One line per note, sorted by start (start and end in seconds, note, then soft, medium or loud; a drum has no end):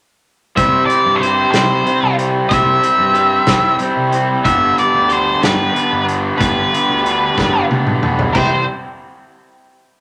0.56 0.82 C2 medium
0.56 1.20 C3 medium
0.56 0.90 G3 medium
0.56 0.88 C4 medium
0.56 0.87 E4 medium
0.56 0.85 E5 medium
0.56 kick medium
0.56 closed hi-hat medium
0.86 1.21 C4 soft
0.86 1.22 E4 medium
0.86 1.21 D5 medium
0.86 closed hi-hat medium
0.90 1.21 G3 soft
1.05 1.43 G2 medium
1.16 1.82 C3 medium
1.16 1.50 C5 medium
1.21 1.54 G3 medium
1.21 1.51 C4 medium
1.21 1.50 E4 medium
1.21 3.14 G4 medium
1.21 closed hi-hat medium
1.51 1.79 C2 medium
1.51 1.84 G3 medium
1.51 1.84 C4 medium
1.51 1.85 E4 medium
1.51 2.13 C5 medium
1.51 snare medium
1.51 closed hi-hat medium
1.83 2.47 C3 medium
1.83 2.18 G3 medium
1.83 2.16 C4 medium
1.83 2.14 E4 medium
1.83 closed hi-hat medium
2.03 2.41 C2 medium
2.15 2.48 G3 soft
2.15 2.49 C4 medium
2.15 2.50 E4 medium
2.15 closed hi-hat medium
2.48 2.77 C2 medium
2.48 3.11 C3 medium
2.48 2.84 G3 medium
2.48 2.82 C4 medium
2.48 2.81 E4 medium
2.48 3.76 E5 loud
2.48 kick medium
2.48 closed hi-hat medium
2.82 3.14 G3 medium
2.82 3.14 C4 medium
2.82 3.14 E4 medium
2.82 closed hi-hat medium
2.99 3.37 G2 medium
3.13 3.79 C3 medium
3.13 3.49 G3 medium
3.13 3.46 C4 medium
3.13 3.45 E4 medium
3.13 5.09 G4 medium
3.13 closed hi-hat medium
3.46 3.73 C2 medium
3.46 3.80 G3 medium
3.46 3.80 C4 medium
3.46 3.82 E4 medium
3.46 kick medium
3.46 snare loud
3.46 closed hi-hat medium
3.79 4.43 C3 medium
3.79 4.15 G3 medium
3.79 4.12 C4 medium
3.79 closed hi-hat soft
3.83 4.11 E4 medium
3.97 4.35 C2 medium
4.12 4.45 G3 medium
4.12 4.44 C4 medium
4.12 4.43 E4 medium
4.12 closed hi-hat soft
4.44 4.71 G1 medium
4.44 6.38 G2 medium
4.44 5.08 D3 medium
4.44 4.81 G3 medium
4.44 4.80 B3 medium
4.44 4.78 D4 medium
4.44 4.75 E5 loud
4.44 kick medium
4.44 closed hi-hat medium
4.78 5.10 G3 medium
4.78 5.10 B3 medium
4.78 5.11 D4 medium
4.78 5.12 D5 medium
4.78 closed hi-hat medium
4.94 5.32 D2 medium
5.09 5.72 D3 medium
5.09 5.43 G3 medium
5.09 5.41 B3 medium
5.09 5.39 D4 medium
5.09 6.71 G4 medium
5.09 5.44 C5 medium
5.09 closed hi-hat soft
5.41 5.69 G1 medium
5.41 5.74 G3 medium
5.41 5.74 B3 medium
5.41 5.74 D4 medium
5.41 6.04 B4 medium
5.41 snare loud
5.41 closed hi-hat medium
5.73 6.37 D3 medium
5.73 6.10 G3 medium
5.73 6.07 B3 medium
5.73 6.06 D4 medium
5.73 closed hi-hat soft
5.93 6.30 G1 medium
6.04 6.35 B3 medium
6.04 6.39 D4 medium
6.08 6.37 G3 medium
6.08 6.39 B3 medium
6.08 closed hi-hat soft
6.38 6.66 G1 medium
6.38 7.03 G2 medium
6.38 7.04 D3 medium
6.38 6.72 G3 medium
6.38 6.72 B3 medium
6.38 6.70 D4 medium
6.38 7.64 B4 loud
6.38 kick loud
6.38 closed hi-hat medium
6.71 7.04 G3 soft
6.71 7.06 B3 soft
6.71 7.06 D4 medium
6.71 closed hi-hat medium
6.89 7.27 D2 medium
7.02 7.68 D3 medium
7.02 7.37 G3 medium
7.02 8.33 G4 medium
7.02 closed hi-hat medium
7.07 7.36 B3 medium
7.07 7.35 D4 medium
7.36 7.63 G1 medium
7.36 7.69 G3 medium
7.36 7.70 B3 medium
7.36 7.71 D4 medium
7.36 kick medium
7.36 snare medium
7.69 8.32 D3 medium
7.69 8.03 G3 medium
7.69 8.02 B3 medium
7.69 8.01 D4 medium
7.69 high tom medium
7.86 8.24 B1 medium
7.86 mid tom medium
8.02 8.33 G3 soft
8.02 8.32 B3 medium
8.02 8.32 D4 medium
8.02 mid tom medium
8.19 floor tom medium
8.33 8.64 C2 medium
8.33 8.59 C3 medium
8.33 8.60 E3 medium
8.33 8.60 G3 medium
8.33 8.60 C4 medium
8.33 8.60 E4 loud
8.33 8.61 G4 medium
8.33 8.63 C5 medium
8.33 kick medium
8.33 crash medium